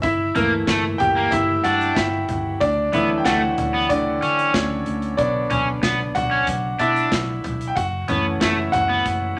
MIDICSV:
0, 0, Header, 1, 5, 480
1, 0, Start_track
1, 0, Key_signature, 2, "major"
1, 0, Tempo, 644261
1, 25, Time_signature, 4, 2, 24, 8
1, 6997, End_track
2, 0, Start_track
2, 0, Title_t, "Grand piano"
2, 0, Program_c, 0, 0
2, 0, Control_c, 0, 64, 127
2, 14, Note_on_c, 0, 76, 120
2, 30, Note_on_c, 0, 64, 87
2, 33, Control_c, 0, 64, 0
2, 155, Control_c, 0, 64, 127
2, 261, Note_on_c, 0, 52, 56
2, 263, Note_on_c, 0, 57, 54
2, 267, Note_on_c, 0, 58, 63
2, 717, Note_off_c, 0, 64, 0
2, 732, Note_on_c, 0, 79, 115
2, 747, Note_on_c, 0, 67, 92
2, 761, Note_off_c, 0, 76, 0
2, 969, Note_off_c, 0, 67, 0
2, 976, Note_on_c, 0, 76, 111
2, 986, Note_off_c, 0, 79, 0
2, 992, Note_on_c, 0, 64, 88
2, 1031, Note_off_c, 0, 76, 0
2, 1046, Note_off_c, 0, 64, 0
2, 1218, Note_on_c, 0, 78, 96
2, 1230, Note_on_c, 0, 66, 81
2, 1444, Note_off_c, 0, 78, 0
2, 1451, Note_off_c, 0, 66, 0
2, 1453, Note_on_c, 0, 76, 101
2, 1468, Note_on_c, 0, 64, 77
2, 1909, Note_off_c, 0, 76, 0
2, 1913, Note_off_c, 0, 52, 0
2, 1914, Note_off_c, 0, 57, 0
2, 1916, Note_off_c, 0, 58, 0
2, 1917, Note_off_c, 0, 64, 0
2, 1940, Note_on_c, 0, 74, 106
2, 1951, Note_on_c, 0, 62, 86
2, 1955, Control_c, 0, 64, 0
2, 2098, Control_c, 0, 64, 127
2, 2171, Note_off_c, 0, 62, 0
2, 2181, Note_on_c, 0, 76, 95
2, 2183, Note_on_c, 0, 52, 61
2, 2189, Note_on_c, 0, 54, 48
2, 2190, Note_off_c, 0, 74, 0
2, 2196, Note_on_c, 0, 57, 65
2, 2196, Note_on_c, 0, 64, 77
2, 2365, Note_off_c, 0, 64, 0
2, 2367, Note_on_c, 0, 79, 74
2, 2376, Note_off_c, 0, 76, 0
2, 2419, Note_on_c, 0, 78, 115
2, 2422, Note_off_c, 0, 79, 0
2, 2433, Note_on_c, 0, 66, 90
2, 2879, Note_off_c, 0, 66, 0
2, 2901, Note_on_c, 0, 74, 110
2, 2913, Note_on_c, 0, 50, 86
2, 2916, Note_off_c, 0, 78, 0
2, 3353, Note_off_c, 0, 74, 0
2, 3359, Note_off_c, 0, 50, 0
2, 3381, Note_on_c, 0, 73, 93
2, 3392, Note_on_c, 0, 61, 70
2, 3718, Note_off_c, 0, 73, 0
2, 3723, Note_off_c, 0, 61, 0
2, 3834, Note_off_c, 0, 52, 0
2, 3837, Note_off_c, 0, 54, 0
2, 3840, Note_off_c, 0, 57, 0
2, 3855, Note_on_c, 0, 74, 102
2, 3858, Note_on_c, 0, 50, 57
2, 3862, Note_on_c, 0, 59, 58
2, 3865, Note_on_c, 0, 73, 70
2, 3868, Note_on_c, 0, 62, 77
2, 3874, Control_c, 0, 64, 0
2, 3998, Control_c, 0, 64, 127
2, 4556, Note_off_c, 0, 62, 0
2, 4581, Note_on_c, 0, 78, 115
2, 4595, Note_on_c, 0, 66, 85
2, 4601, Note_off_c, 0, 74, 0
2, 5033, Note_off_c, 0, 78, 0
2, 5040, Note_off_c, 0, 66, 0
2, 5064, Note_on_c, 0, 76, 112
2, 5076, Note_on_c, 0, 64, 77
2, 5703, Note_off_c, 0, 76, 0
2, 5708, Note_off_c, 0, 64, 0
2, 5719, Note_on_c, 0, 79, 77
2, 5752, Note_off_c, 0, 50, 0
2, 5754, Note_off_c, 0, 59, 0
2, 5755, Note_off_c, 0, 73, 0
2, 5778, Note_off_c, 0, 79, 0
2, 5778, Note_on_c, 0, 78, 104
2, 5790, Note_on_c, 0, 66, 80
2, 5793, Control_c, 0, 64, 0
2, 5935, Control_c, 0, 64, 127
2, 6023, Note_on_c, 0, 52, 59
2, 6026, Note_on_c, 0, 57, 53
2, 6030, Note_on_c, 0, 61, 67
2, 6238, Note_off_c, 0, 66, 0
2, 6266, Note_on_c, 0, 76, 104
2, 6276, Note_off_c, 0, 78, 0
2, 6277, Note_on_c, 0, 64, 83
2, 6343, Note_off_c, 0, 52, 0
2, 6344, Note_off_c, 0, 57, 0
2, 6347, Note_off_c, 0, 61, 0
2, 6489, Note_off_c, 0, 76, 0
2, 6495, Note_off_c, 0, 64, 0
2, 6498, Note_on_c, 0, 78, 127
2, 6511, Note_on_c, 0, 66, 87
2, 6997, Note_off_c, 0, 66, 0
2, 6997, Note_off_c, 0, 78, 0
2, 6997, End_track
3, 0, Start_track
3, 0, Title_t, "Overdriven electric guitar"
3, 0, Program_c, 1, 29
3, 267, Note_on_c, 1, 58, 90
3, 380, Note_off_c, 1, 58, 0
3, 508, Note_on_c, 1, 57, 88
3, 620, Note_off_c, 1, 57, 0
3, 867, Note_on_c, 1, 58, 76
3, 980, Note_off_c, 1, 58, 0
3, 1227, Note_on_c, 1, 62, 81
3, 1454, Note_off_c, 1, 62, 0
3, 2186, Note_on_c, 1, 59, 72
3, 2299, Note_off_c, 1, 59, 0
3, 2427, Note_on_c, 1, 57, 81
3, 2540, Note_off_c, 1, 57, 0
3, 2787, Note_on_c, 1, 59, 84
3, 2900, Note_off_c, 1, 59, 0
3, 3148, Note_on_c, 1, 61, 81
3, 3375, Note_off_c, 1, 61, 0
3, 4107, Note_on_c, 1, 61, 86
3, 4220, Note_off_c, 1, 61, 0
3, 4345, Note_on_c, 1, 59, 76
3, 4459, Note_off_c, 1, 59, 0
3, 4703, Note_on_c, 1, 61, 78
3, 4818, Note_off_c, 1, 61, 0
3, 5063, Note_on_c, 1, 62, 77
3, 5292, Note_off_c, 1, 62, 0
3, 6029, Note_on_c, 1, 59, 81
3, 6141, Note_off_c, 1, 59, 0
3, 6271, Note_on_c, 1, 57, 75
3, 6382, Note_off_c, 1, 57, 0
3, 6626, Note_on_c, 1, 59, 80
3, 6739, Note_off_c, 1, 59, 0
3, 6997, End_track
4, 0, Start_track
4, 0, Title_t, "Fingered electric bass"
4, 0, Program_c, 2, 33
4, 25, Note_on_c, 2, 31, 105
4, 222, Note_off_c, 2, 31, 0
4, 268, Note_on_c, 2, 31, 93
4, 463, Note_off_c, 2, 31, 0
4, 507, Note_on_c, 2, 31, 111
4, 703, Note_off_c, 2, 31, 0
4, 747, Note_on_c, 2, 31, 100
4, 943, Note_off_c, 2, 31, 0
4, 985, Note_on_c, 2, 31, 109
4, 1181, Note_off_c, 2, 31, 0
4, 1229, Note_on_c, 2, 43, 106
4, 1424, Note_off_c, 2, 43, 0
4, 1464, Note_on_c, 2, 31, 107
4, 1661, Note_off_c, 2, 31, 0
4, 1712, Note_on_c, 2, 31, 86
4, 1905, Note_off_c, 2, 31, 0
4, 1946, Note_on_c, 2, 38, 111
4, 2143, Note_off_c, 2, 38, 0
4, 2187, Note_on_c, 2, 38, 92
4, 2383, Note_off_c, 2, 38, 0
4, 2426, Note_on_c, 2, 38, 93
4, 2622, Note_off_c, 2, 38, 0
4, 2666, Note_on_c, 2, 38, 95
4, 2862, Note_off_c, 2, 38, 0
4, 2907, Note_on_c, 2, 38, 109
4, 3103, Note_off_c, 2, 38, 0
4, 3147, Note_on_c, 2, 50, 98
4, 3343, Note_off_c, 2, 50, 0
4, 3384, Note_on_c, 2, 38, 110
4, 3581, Note_off_c, 2, 38, 0
4, 3624, Note_on_c, 2, 38, 96
4, 3821, Note_off_c, 2, 38, 0
4, 3864, Note_on_c, 2, 35, 102
4, 4061, Note_off_c, 2, 35, 0
4, 4106, Note_on_c, 2, 35, 105
4, 4302, Note_off_c, 2, 35, 0
4, 4345, Note_on_c, 2, 35, 105
4, 4541, Note_off_c, 2, 35, 0
4, 4581, Note_on_c, 2, 35, 94
4, 4779, Note_off_c, 2, 35, 0
4, 4821, Note_on_c, 2, 35, 105
4, 5019, Note_off_c, 2, 35, 0
4, 5064, Note_on_c, 2, 47, 91
4, 5261, Note_off_c, 2, 47, 0
4, 5302, Note_on_c, 2, 35, 103
4, 5500, Note_off_c, 2, 35, 0
4, 5545, Note_on_c, 2, 35, 87
4, 5742, Note_off_c, 2, 35, 0
4, 5786, Note_on_c, 2, 30, 108
4, 5982, Note_off_c, 2, 30, 0
4, 6025, Note_on_c, 2, 30, 93
4, 6222, Note_off_c, 2, 30, 0
4, 6268, Note_on_c, 2, 30, 95
4, 6464, Note_off_c, 2, 30, 0
4, 6508, Note_on_c, 2, 30, 93
4, 6703, Note_off_c, 2, 30, 0
4, 6747, Note_on_c, 2, 30, 104
4, 6943, Note_off_c, 2, 30, 0
4, 6997, End_track
5, 0, Start_track
5, 0, Title_t, "Drums"
5, 25, Note_on_c, 9, 36, 109
5, 25, Note_on_c, 9, 42, 77
5, 99, Note_off_c, 9, 36, 0
5, 100, Note_off_c, 9, 42, 0
5, 264, Note_on_c, 9, 42, 66
5, 265, Note_on_c, 9, 43, 70
5, 338, Note_off_c, 9, 42, 0
5, 340, Note_off_c, 9, 43, 0
5, 503, Note_on_c, 9, 38, 113
5, 503, Note_on_c, 9, 42, 86
5, 507, Note_on_c, 9, 36, 107
5, 577, Note_off_c, 9, 38, 0
5, 577, Note_off_c, 9, 42, 0
5, 581, Note_off_c, 9, 36, 0
5, 744, Note_on_c, 9, 42, 77
5, 746, Note_on_c, 9, 43, 69
5, 818, Note_off_c, 9, 42, 0
5, 821, Note_off_c, 9, 43, 0
5, 982, Note_on_c, 9, 42, 94
5, 985, Note_on_c, 9, 36, 107
5, 1056, Note_off_c, 9, 42, 0
5, 1060, Note_off_c, 9, 36, 0
5, 1224, Note_on_c, 9, 42, 82
5, 1298, Note_off_c, 9, 42, 0
5, 1349, Note_on_c, 9, 42, 54
5, 1423, Note_off_c, 9, 42, 0
5, 1464, Note_on_c, 9, 36, 109
5, 1464, Note_on_c, 9, 38, 103
5, 1467, Note_on_c, 9, 42, 101
5, 1538, Note_off_c, 9, 36, 0
5, 1539, Note_off_c, 9, 38, 0
5, 1541, Note_off_c, 9, 42, 0
5, 1702, Note_on_c, 9, 42, 68
5, 1704, Note_on_c, 9, 43, 63
5, 1777, Note_off_c, 9, 42, 0
5, 1779, Note_off_c, 9, 43, 0
5, 1945, Note_on_c, 9, 42, 73
5, 1946, Note_on_c, 9, 36, 113
5, 2019, Note_off_c, 9, 42, 0
5, 2020, Note_off_c, 9, 36, 0
5, 2183, Note_on_c, 9, 42, 66
5, 2184, Note_on_c, 9, 43, 73
5, 2257, Note_off_c, 9, 42, 0
5, 2259, Note_off_c, 9, 43, 0
5, 2424, Note_on_c, 9, 38, 110
5, 2424, Note_on_c, 9, 42, 86
5, 2427, Note_on_c, 9, 36, 112
5, 2498, Note_off_c, 9, 38, 0
5, 2499, Note_off_c, 9, 42, 0
5, 2502, Note_off_c, 9, 36, 0
5, 2665, Note_on_c, 9, 42, 77
5, 2668, Note_on_c, 9, 43, 69
5, 2740, Note_off_c, 9, 42, 0
5, 2743, Note_off_c, 9, 43, 0
5, 2903, Note_on_c, 9, 42, 89
5, 2906, Note_on_c, 9, 36, 105
5, 2978, Note_off_c, 9, 42, 0
5, 2980, Note_off_c, 9, 36, 0
5, 3147, Note_on_c, 9, 42, 75
5, 3221, Note_off_c, 9, 42, 0
5, 3270, Note_on_c, 9, 42, 60
5, 3344, Note_off_c, 9, 42, 0
5, 3384, Note_on_c, 9, 36, 114
5, 3384, Note_on_c, 9, 38, 105
5, 3387, Note_on_c, 9, 42, 101
5, 3458, Note_off_c, 9, 36, 0
5, 3459, Note_off_c, 9, 38, 0
5, 3461, Note_off_c, 9, 42, 0
5, 3621, Note_on_c, 9, 42, 73
5, 3695, Note_off_c, 9, 42, 0
5, 3742, Note_on_c, 9, 42, 47
5, 3816, Note_off_c, 9, 42, 0
5, 3862, Note_on_c, 9, 42, 75
5, 3864, Note_on_c, 9, 36, 111
5, 3936, Note_off_c, 9, 42, 0
5, 3938, Note_off_c, 9, 36, 0
5, 4100, Note_on_c, 9, 42, 69
5, 4102, Note_on_c, 9, 43, 71
5, 4175, Note_off_c, 9, 42, 0
5, 4176, Note_off_c, 9, 43, 0
5, 4342, Note_on_c, 9, 38, 102
5, 4342, Note_on_c, 9, 42, 87
5, 4345, Note_on_c, 9, 36, 107
5, 4417, Note_off_c, 9, 38, 0
5, 4417, Note_off_c, 9, 42, 0
5, 4420, Note_off_c, 9, 36, 0
5, 4583, Note_on_c, 9, 42, 84
5, 4586, Note_on_c, 9, 43, 74
5, 4658, Note_off_c, 9, 42, 0
5, 4660, Note_off_c, 9, 43, 0
5, 4820, Note_on_c, 9, 42, 96
5, 4823, Note_on_c, 9, 36, 113
5, 4895, Note_off_c, 9, 42, 0
5, 4898, Note_off_c, 9, 36, 0
5, 5061, Note_on_c, 9, 42, 81
5, 5135, Note_off_c, 9, 42, 0
5, 5187, Note_on_c, 9, 42, 57
5, 5261, Note_off_c, 9, 42, 0
5, 5302, Note_on_c, 9, 36, 104
5, 5303, Note_on_c, 9, 38, 119
5, 5306, Note_on_c, 9, 42, 104
5, 5377, Note_off_c, 9, 36, 0
5, 5378, Note_off_c, 9, 38, 0
5, 5381, Note_off_c, 9, 42, 0
5, 5543, Note_on_c, 9, 42, 73
5, 5545, Note_on_c, 9, 43, 62
5, 5618, Note_off_c, 9, 42, 0
5, 5620, Note_off_c, 9, 43, 0
5, 5668, Note_on_c, 9, 42, 49
5, 5742, Note_off_c, 9, 42, 0
5, 5786, Note_on_c, 9, 36, 112
5, 5787, Note_on_c, 9, 42, 73
5, 5860, Note_off_c, 9, 36, 0
5, 5862, Note_off_c, 9, 42, 0
5, 6021, Note_on_c, 9, 42, 66
5, 6023, Note_on_c, 9, 43, 68
5, 6096, Note_off_c, 9, 42, 0
5, 6097, Note_off_c, 9, 43, 0
5, 6266, Note_on_c, 9, 38, 109
5, 6266, Note_on_c, 9, 42, 86
5, 6268, Note_on_c, 9, 36, 106
5, 6341, Note_off_c, 9, 38, 0
5, 6341, Note_off_c, 9, 42, 0
5, 6342, Note_off_c, 9, 36, 0
5, 6506, Note_on_c, 9, 42, 81
5, 6509, Note_on_c, 9, 43, 74
5, 6580, Note_off_c, 9, 42, 0
5, 6583, Note_off_c, 9, 43, 0
5, 6747, Note_on_c, 9, 36, 105
5, 6747, Note_on_c, 9, 42, 94
5, 6821, Note_off_c, 9, 42, 0
5, 6822, Note_off_c, 9, 36, 0
5, 6997, End_track
0, 0, End_of_file